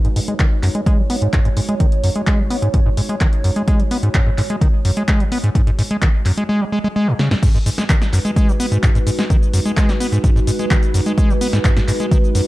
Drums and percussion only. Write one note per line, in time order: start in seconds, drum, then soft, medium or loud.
0.05 closed hi-hat soft
0.16 open hi-hat loud
0.28 closed hi-hat medium
0.39 kick loud
0.39 clap loud
0.39 closed hi-hat medium
0.63 clap soft
0.63 open hi-hat medium
0.75 closed hi-hat soft
0.86 kick loud
0.86 closed hi-hat medium
1.10 open hi-hat loud
1.22 closed hi-hat soft
1.33 kick loud
1.33 clap loud
1.33 closed hi-hat medium
1.45 closed hi-hat soft
1.57 open hi-hat medium
1.69 closed hi-hat soft
1.80 kick loud
1.80 closed hi-hat medium
1.92 closed hi-hat soft
2.04 open hi-hat loud
2.16 closed hi-hat soft
2.27 kick loud
2.27 clap loud
2.27 closed hi-hat medium
2.50 open hi-hat medium
2.62 closed hi-hat medium
2.74 kick loud
2.74 closed hi-hat medium
2.97 open hi-hat loud
3.09 closed hi-hat medium
3.21 kick loud
3.21 clap loud
3.21 closed hi-hat medium
3.33 closed hi-hat soft
3.44 open hi-hat medium
3.56 closed hi-hat soft
3.68 kick loud
3.68 closed hi-hat medium
3.80 closed hi-hat soft
3.91 open hi-hat loud
4.03 closed hi-hat medium
4.15 kick loud
4.15 clap loud
4.15 closed hi-hat medium
4.38 clap soft
4.38 open hi-hat medium
4.50 closed hi-hat medium
4.61 kick loud
4.61 closed hi-hat medium
4.85 open hi-hat loud
4.97 closed hi-hat medium
5.08 kick loud
5.08 clap loud
5.08 closed hi-hat medium
5.20 closed hi-hat soft
5.32 open hi-hat medium
5.44 closed hi-hat medium
5.55 kick loud
5.55 closed hi-hat medium
5.67 closed hi-hat soft
5.79 open hi-hat loud
5.91 closed hi-hat medium
6.02 kick loud
6.02 clap loud
6.02 closed hi-hat medium
6.26 clap soft
6.26 open hi-hat medium
6.37 closed hi-hat medium
7.19 snare medium
7.31 snare loud
7.43 kick loud
7.43 closed hi-hat medium
7.43 crash loud
7.43 cabasa soft
7.55 cabasa soft
7.66 open hi-hat loud
7.66 cabasa medium
7.78 snare medium
7.78 closed hi-hat medium
7.78 cabasa soft
7.89 kick loud
7.89 clap loud
7.89 closed hi-hat medium
7.89 cabasa soft
8.02 snare medium
8.02 closed hi-hat soft
8.02 cabasa soft
8.13 clap soft
8.13 open hi-hat medium
8.13 cabasa medium
8.25 closed hi-hat medium
8.25 cabasa soft
8.36 kick loud
8.36 closed hi-hat medium
8.36 cabasa soft
8.49 cabasa soft
8.60 open hi-hat loud
8.60 cabasa medium
8.72 closed hi-hat medium
8.72 cabasa soft
8.83 kick loud
8.83 clap loud
8.83 closed hi-hat medium
8.83 cabasa soft
8.95 closed hi-hat soft
8.95 cabasa soft
9.07 open hi-hat medium
9.07 cabasa medium
9.19 snare medium
9.19 closed hi-hat medium
9.19 cabasa soft
9.30 kick loud
9.30 closed hi-hat medium
9.30 cabasa soft
9.43 cabasa soft
9.54 open hi-hat loud
9.54 cabasa medium
9.66 closed hi-hat medium
9.66 cabasa soft
9.77 kick loud
9.77 clap loud
9.77 closed hi-hat medium
9.77 cabasa soft
9.89 snare medium
9.89 closed hi-hat soft
9.89 cabasa soft
10.00 open hi-hat medium
10.00 cabasa medium
10.12 closed hi-hat medium
10.12 cabasa soft
10.24 kick loud
10.24 closed hi-hat medium
10.24 cabasa soft
10.37 cabasa soft
10.47 open hi-hat loud
10.47 cabasa medium
10.59 closed hi-hat medium
10.59 cabasa soft
10.71 kick loud
10.71 clap loud
10.71 closed hi-hat medium
10.71 cabasa soft
10.83 closed hi-hat soft
10.83 cabasa soft
10.94 open hi-hat loud
10.94 cabasa medium
11.06 closed hi-hat medium
11.06 cabasa soft
11.18 kick loud
11.18 closed hi-hat medium
11.18 cabasa soft
11.30 cabasa soft
11.41 open hi-hat loud
11.41 cabasa medium
11.53 snare medium
11.53 closed hi-hat medium
11.53 cabasa soft
11.65 kick loud
11.65 clap loud
11.65 closed hi-hat medium
11.65 cabasa soft
11.77 snare medium
11.77 closed hi-hat soft
11.77 cabasa soft
11.88 clap soft
11.88 open hi-hat loud
11.88 cabasa medium
12.00 closed hi-hat medium
12.00 cabasa soft
12.11 kick loud
12.11 closed hi-hat medium
12.11 cabasa soft
12.24 cabasa soft
12.35 open hi-hat loud
12.35 cabasa medium